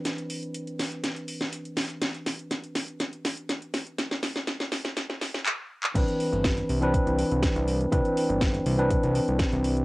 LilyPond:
<<
  \new Staff \with { instrumentName = "Tine electric piano" } { \time 4/4 \key c \major \tempo 4 = 122 <e c' d' b'>1~ | <e c' d' b'>1~ | <e c' d' b'>2. r4 | <e c' d' b'>4.~ <e c' d' b'>16 <e c' d' b'>2~ <e c' d' b'>16 |
<e c' d' b'>4.~ <e c' d' b'>16 <e c' d' b'>2~ <e c' d' b'>16 | }
  \new Staff \with { instrumentName = "Analog synth bass" } { \clef bass \time 4/4 \key c \major r1 | r1 | r1 | c,16 r8 g,,8. c,8. c,16 r16 c,16 r16 c,8. |
c,16 r8 g,,8. c,8. c,16 r16 c,16 r16 c,8. | }
  \new DrumStaff \with { instrumentName = "Drums" } \drummode { \time 4/4 <hh sn>16 hh16 hho16 hh16 hh16 hh16 <hho sn>16 hh16 <hh sn>16 hh16 hho16 <hh sn>16 hh16 hh16 <hho sn>16 hh16 | <hh sn>16 hh16 <hho sn>16 hh16 <hh sn>16 hh16 <hho sn>16 hh16 <hh sn>16 hh16 <hho sn>16 hh16 <hh sn>16 hh16 <hho sn>16 hh16 | <hh sn>16 <hh sn>16 <hho sn>16 <hh sn>16 <hh sn>16 <hh sn>16 <hho sn>16 <hh sn>16 <hh sn>16 <hh sn>16 <hho sn>16 <hh sn>16 hc8. hc16 | <cymc hh bd>16 hh16 hho16 hh16 <hh bd sn>16 hh16 hho16 hh16 <hh bd>16 hh16 hho16 hh16 <hh bd sn>16 hh16 hho16 hh16 |
<hh bd>16 hh16 hho16 hh16 <hh bd sn>16 hh16 hho16 hh16 <hh bd>16 hh16 hho16 hh16 <hh bd sn>16 hh16 hho16 hh16 | }
>>